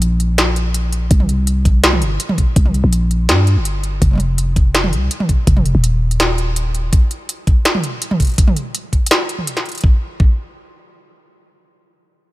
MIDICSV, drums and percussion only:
0, 0, Header, 1, 2, 480
1, 0, Start_track
1, 0, Tempo, 363636
1, 1463, Time_signature, 4, 2, 24, 8
1, 16268, End_track
2, 0, Start_track
2, 0, Title_t, "Drums"
2, 23, Note_on_c, 9, 42, 69
2, 155, Note_off_c, 9, 42, 0
2, 263, Note_on_c, 9, 42, 40
2, 395, Note_off_c, 9, 42, 0
2, 503, Note_on_c, 9, 38, 127
2, 503, Note_on_c, 9, 42, 82
2, 635, Note_off_c, 9, 38, 0
2, 635, Note_off_c, 9, 42, 0
2, 742, Note_on_c, 9, 42, 38
2, 874, Note_off_c, 9, 42, 0
2, 982, Note_on_c, 9, 42, 75
2, 1114, Note_off_c, 9, 42, 0
2, 1221, Note_on_c, 9, 42, 41
2, 1353, Note_off_c, 9, 42, 0
2, 1461, Note_on_c, 9, 36, 127
2, 1462, Note_on_c, 9, 42, 81
2, 1585, Note_on_c, 9, 45, 77
2, 1593, Note_off_c, 9, 36, 0
2, 1594, Note_off_c, 9, 42, 0
2, 1702, Note_on_c, 9, 42, 37
2, 1717, Note_off_c, 9, 45, 0
2, 1834, Note_off_c, 9, 42, 0
2, 1942, Note_on_c, 9, 42, 69
2, 2074, Note_off_c, 9, 42, 0
2, 2181, Note_on_c, 9, 36, 113
2, 2183, Note_on_c, 9, 42, 39
2, 2313, Note_off_c, 9, 36, 0
2, 2315, Note_off_c, 9, 42, 0
2, 2423, Note_on_c, 9, 38, 126
2, 2423, Note_on_c, 9, 42, 84
2, 2545, Note_on_c, 9, 45, 81
2, 2555, Note_off_c, 9, 38, 0
2, 2555, Note_off_c, 9, 42, 0
2, 2662, Note_on_c, 9, 42, 39
2, 2677, Note_off_c, 9, 45, 0
2, 2794, Note_off_c, 9, 42, 0
2, 2902, Note_on_c, 9, 42, 71
2, 3026, Note_on_c, 9, 45, 78
2, 3034, Note_off_c, 9, 42, 0
2, 3141, Note_on_c, 9, 36, 66
2, 3143, Note_on_c, 9, 42, 37
2, 3158, Note_off_c, 9, 45, 0
2, 3273, Note_off_c, 9, 36, 0
2, 3275, Note_off_c, 9, 42, 0
2, 3381, Note_on_c, 9, 36, 126
2, 3382, Note_on_c, 9, 42, 76
2, 3504, Note_on_c, 9, 45, 76
2, 3513, Note_off_c, 9, 36, 0
2, 3514, Note_off_c, 9, 42, 0
2, 3621, Note_on_c, 9, 42, 36
2, 3636, Note_off_c, 9, 45, 0
2, 3753, Note_off_c, 9, 42, 0
2, 3862, Note_on_c, 9, 42, 67
2, 3994, Note_off_c, 9, 42, 0
2, 4103, Note_on_c, 9, 42, 38
2, 4235, Note_off_c, 9, 42, 0
2, 4341, Note_on_c, 9, 38, 125
2, 4341, Note_on_c, 9, 42, 79
2, 4473, Note_off_c, 9, 38, 0
2, 4473, Note_off_c, 9, 42, 0
2, 4581, Note_on_c, 9, 42, 37
2, 4713, Note_off_c, 9, 42, 0
2, 4822, Note_on_c, 9, 42, 70
2, 4954, Note_off_c, 9, 42, 0
2, 5062, Note_on_c, 9, 42, 37
2, 5194, Note_off_c, 9, 42, 0
2, 5302, Note_on_c, 9, 36, 125
2, 5303, Note_on_c, 9, 42, 76
2, 5427, Note_on_c, 9, 45, 35
2, 5434, Note_off_c, 9, 36, 0
2, 5435, Note_off_c, 9, 42, 0
2, 5455, Note_off_c, 9, 45, 0
2, 5455, Note_on_c, 9, 45, 44
2, 5483, Note_off_c, 9, 45, 0
2, 5483, Note_on_c, 9, 45, 53
2, 5512, Note_off_c, 9, 45, 0
2, 5512, Note_on_c, 9, 45, 65
2, 5541, Note_on_c, 9, 42, 36
2, 5644, Note_off_c, 9, 45, 0
2, 5673, Note_off_c, 9, 42, 0
2, 5783, Note_on_c, 9, 42, 65
2, 5915, Note_off_c, 9, 42, 0
2, 6022, Note_on_c, 9, 36, 104
2, 6023, Note_on_c, 9, 42, 36
2, 6154, Note_off_c, 9, 36, 0
2, 6155, Note_off_c, 9, 42, 0
2, 6264, Note_on_c, 9, 38, 117
2, 6264, Note_on_c, 9, 42, 79
2, 6386, Note_on_c, 9, 45, 78
2, 6396, Note_off_c, 9, 38, 0
2, 6396, Note_off_c, 9, 42, 0
2, 6505, Note_on_c, 9, 42, 36
2, 6518, Note_off_c, 9, 45, 0
2, 6637, Note_off_c, 9, 42, 0
2, 6744, Note_on_c, 9, 42, 68
2, 6866, Note_on_c, 9, 45, 79
2, 6876, Note_off_c, 9, 42, 0
2, 6982, Note_on_c, 9, 36, 64
2, 6984, Note_on_c, 9, 42, 36
2, 6998, Note_off_c, 9, 45, 0
2, 7114, Note_off_c, 9, 36, 0
2, 7116, Note_off_c, 9, 42, 0
2, 7223, Note_on_c, 9, 36, 121
2, 7223, Note_on_c, 9, 42, 74
2, 7347, Note_on_c, 9, 45, 77
2, 7355, Note_off_c, 9, 36, 0
2, 7355, Note_off_c, 9, 42, 0
2, 7465, Note_on_c, 9, 42, 36
2, 7479, Note_off_c, 9, 45, 0
2, 7597, Note_off_c, 9, 42, 0
2, 7704, Note_on_c, 9, 42, 63
2, 7836, Note_off_c, 9, 42, 0
2, 8067, Note_on_c, 9, 42, 37
2, 8182, Note_off_c, 9, 42, 0
2, 8182, Note_on_c, 9, 38, 115
2, 8182, Note_on_c, 9, 42, 75
2, 8314, Note_off_c, 9, 38, 0
2, 8314, Note_off_c, 9, 42, 0
2, 8424, Note_on_c, 9, 42, 35
2, 8556, Note_off_c, 9, 42, 0
2, 8663, Note_on_c, 9, 42, 70
2, 8795, Note_off_c, 9, 42, 0
2, 8903, Note_on_c, 9, 42, 34
2, 9035, Note_off_c, 9, 42, 0
2, 9143, Note_on_c, 9, 36, 117
2, 9143, Note_on_c, 9, 42, 76
2, 9275, Note_off_c, 9, 36, 0
2, 9275, Note_off_c, 9, 42, 0
2, 9383, Note_on_c, 9, 42, 37
2, 9515, Note_off_c, 9, 42, 0
2, 9623, Note_on_c, 9, 42, 66
2, 9755, Note_off_c, 9, 42, 0
2, 9863, Note_on_c, 9, 36, 102
2, 9863, Note_on_c, 9, 42, 37
2, 9995, Note_off_c, 9, 36, 0
2, 9995, Note_off_c, 9, 42, 0
2, 10102, Note_on_c, 9, 38, 113
2, 10102, Note_on_c, 9, 42, 75
2, 10226, Note_on_c, 9, 45, 84
2, 10234, Note_off_c, 9, 38, 0
2, 10234, Note_off_c, 9, 42, 0
2, 10342, Note_on_c, 9, 42, 36
2, 10358, Note_off_c, 9, 45, 0
2, 10474, Note_off_c, 9, 42, 0
2, 10583, Note_on_c, 9, 42, 68
2, 10706, Note_on_c, 9, 45, 84
2, 10715, Note_off_c, 9, 42, 0
2, 10823, Note_on_c, 9, 36, 59
2, 10823, Note_on_c, 9, 42, 34
2, 10838, Note_off_c, 9, 45, 0
2, 10853, Note_off_c, 9, 42, 0
2, 10853, Note_on_c, 9, 42, 28
2, 10885, Note_off_c, 9, 42, 0
2, 10885, Note_on_c, 9, 42, 22
2, 10917, Note_off_c, 9, 42, 0
2, 10917, Note_on_c, 9, 42, 20
2, 10948, Note_off_c, 9, 42, 0
2, 10948, Note_on_c, 9, 42, 15
2, 10955, Note_off_c, 9, 36, 0
2, 10977, Note_off_c, 9, 42, 0
2, 10977, Note_on_c, 9, 42, 12
2, 11005, Note_off_c, 9, 42, 0
2, 11005, Note_on_c, 9, 42, 10
2, 11035, Note_off_c, 9, 42, 0
2, 11035, Note_on_c, 9, 42, 8
2, 11063, Note_on_c, 9, 36, 119
2, 11064, Note_off_c, 9, 42, 0
2, 11064, Note_on_c, 9, 42, 80
2, 11187, Note_on_c, 9, 45, 81
2, 11195, Note_off_c, 9, 36, 0
2, 11196, Note_off_c, 9, 42, 0
2, 11306, Note_on_c, 9, 42, 38
2, 11319, Note_off_c, 9, 45, 0
2, 11438, Note_off_c, 9, 42, 0
2, 11544, Note_on_c, 9, 42, 68
2, 11676, Note_off_c, 9, 42, 0
2, 11784, Note_on_c, 9, 36, 59
2, 11785, Note_on_c, 9, 42, 38
2, 11916, Note_off_c, 9, 36, 0
2, 11917, Note_off_c, 9, 42, 0
2, 11966, Note_on_c, 9, 42, 82
2, 12025, Note_on_c, 9, 38, 114
2, 12098, Note_off_c, 9, 42, 0
2, 12157, Note_off_c, 9, 38, 0
2, 12265, Note_on_c, 9, 42, 38
2, 12387, Note_on_c, 9, 45, 41
2, 12397, Note_off_c, 9, 42, 0
2, 12505, Note_on_c, 9, 42, 71
2, 12519, Note_off_c, 9, 45, 0
2, 12628, Note_on_c, 9, 38, 37
2, 12637, Note_off_c, 9, 42, 0
2, 12745, Note_on_c, 9, 42, 16
2, 12760, Note_off_c, 9, 38, 0
2, 12787, Note_off_c, 9, 42, 0
2, 12787, Note_on_c, 9, 42, 20
2, 12826, Note_off_c, 9, 42, 0
2, 12826, Note_on_c, 9, 42, 23
2, 12868, Note_off_c, 9, 42, 0
2, 12868, Note_on_c, 9, 42, 25
2, 12904, Note_off_c, 9, 42, 0
2, 12904, Note_on_c, 9, 42, 29
2, 12944, Note_off_c, 9, 42, 0
2, 12944, Note_on_c, 9, 42, 33
2, 12984, Note_on_c, 9, 36, 119
2, 13076, Note_off_c, 9, 42, 0
2, 13116, Note_off_c, 9, 36, 0
2, 13463, Note_on_c, 9, 36, 115
2, 13595, Note_off_c, 9, 36, 0
2, 16268, End_track
0, 0, End_of_file